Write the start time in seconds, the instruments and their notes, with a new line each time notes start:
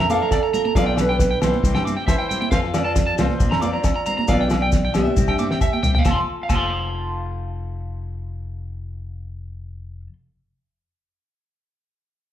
Already playing: steel-string acoustic guitar E5
0.00 fingered electric bass F2
0.09 clean electric guitar F3 C4 D4 A#4 D6, steel-string acoustic guitar A4 F5, high conga, maracas
0.22 clean electric guitar C4 D4 A#4 A#5
0.31 clean electric guitar D5, kick, snare, low agogo, maracas
0.43 clean electric guitar A#5
0.54 clean electric guitar F3 C4 A#4 A#5, muted clean electric guitar stroke, low conga, maracas
0.65 clean electric guitar A#5, high conga
0.75 fingered electric bass B1, clean electric guitar F3 B3 D4 G4 F5, steel-string acoustic guitar F4 D5, kick, snare, low agogo, maracas
0.86 clean electric guitar B3 D4 G4 G5
0.97 steel-string acoustic guitar D4 B4, snare, low agogo, maracas
1.09 clean electric guitar B3 D4 G4 G5
1.19 kick, snare, maracas
1.31 clean electric guitar G5
1.40 fingered electric bass B1, clean electric guitar F3 B3 D4 G4, steel-string acoustic guitar E4 C5, snare, high conga, low conga, low agogo, maracas
1.53 snare, high conga
1.62 fingered electric bass C2, clean electric guitar G3 C4 E4 G4, kick, maracas
1.75 fingered electric bass G2, clean electric guitar G5, snare, low agogo
1.85 clean electric guitar G3 C4 E4 D6, muted clean electric guitar stroke, high conga, maracas
1.96 clean electric guitar E4 G4 G5
2.07 steel-string acoustic guitar E4 C5, clean electric guitar E5, kick, snare, low agogo, maracas
2.18 clean electric guitar G5
2.29 clean electric guitar G3 C4 E4 G4 G5, low conga, maracas
2.41 clean electric guitar G5, high conga
2.51 fingered electric bass F2, clean electric guitar F3 C4 F4 A4 F5, steel-string acoustic guitar F4 C5, kick, snare, low agogo, maracas
2.63 clean electric guitar C4 F4 A4, snare
2.74 steel-string acoustic guitar F4 D5, snare, low agogo, maracas
2.85 clean electric guitar C4 F4 A4 A5
2.96 kick, snare, maracas
3.06 clean electric guitar A5
3.17 fingered electric bass C2, clean electric guitar F3 C4 A4, steel-string acoustic guitar F4 C5, muted clean electric guitar stroke, snare, high conga, low conga, low agogo, maracas
3.30 snare, high conga
3.38 fingered electric bass A#1, clean electric guitar F3 C4 D4, kick, maracas
3.51 fingered electric bass F2, clean electric guitar A#5, snare, low agogo
3.61 clean electric guitar F3 C4 D4 D6, steel-string acoustic guitar F4 D5, high conga, maracas
3.73 clean electric guitar C4 D4 A#5
3.84 muted clean electric guitar stroke, kick, snare, low agogo, maracas
3.96 clean electric guitar A#5
4.06 clean electric guitar C4 D4 A#5, low conga, maracas
4.18 clean electric guitar A#5, high conga
4.28 fingered electric bass B1, clean electric guitar F3 B3 D4 F5, steel-string acoustic guitar F4 D5, kick, snare, low agogo, maracas
4.40 clean electric guitar B3 D4 G5, snare
4.50 steel-string acoustic guitar F4 D5, snare, low conga, low agogo, maracas
4.61 clean electric guitar B3 G5, muted clean electric guitar stroke
4.72 kick, snare, maracas
4.85 clean electric guitar G5
4.93 fingered electric bass B1, clean electric guitar F3 B3 D4, steel-string acoustic guitar G4 E5, snare, high conga, low conga, low agogo, maracas
5.07 high conga
5.16 fingered electric bass C2, clean electric guitar C4 E4, muted clean electric guitar stroke, kick, high tom, low conga, maracas
5.28 fingered electric bass G2, clean electric guitar G5, kick, low agogo
5.38 clean electric guitar G3 C4 E4 D6, high conga, maracas
5.51 clean electric guitar C4 G5, muted clean electric guitar stroke, snare
5.61 clean electric guitar E5, kick, mid tom, low agogo, maracas
5.73 clean electric guitar G5, high conga
5.82 clean electric guitar G3 C4 E4 G5, floor tom, low conga, maracas
5.95 clean electric guitar G5, floor tom, high conga
5.99 clean electric guitar F5, muted clean electric guitar stroke
6.05 fingered electric bass F1, clean electric guitar F4 A5, kick, snare, high conga, low agogo, maracas
6.11 clean electric guitar A4 C6
6.43 clean electric guitar F5, muted clean electric guitar stroke
6.49 fingered electric bass F1, clean electric guitar F4 A5, kick, crash, high conga, low agogo, maracas
6.55 clean electric guitar A4 C6